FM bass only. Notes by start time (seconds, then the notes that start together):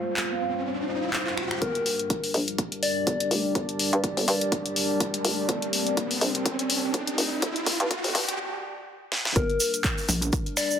1.62 G1
2.34 A#1
3.07 G1
3.31 F1
3.55 G1
3.93 G2
4.17 G1
4.28 G2
5.25 F1
5.49 G1
6.21 A#1
6.94 G1
7.18 F1
7.42 G1
7.80 G2
8.04 G1
8.15 G2
9.36 G1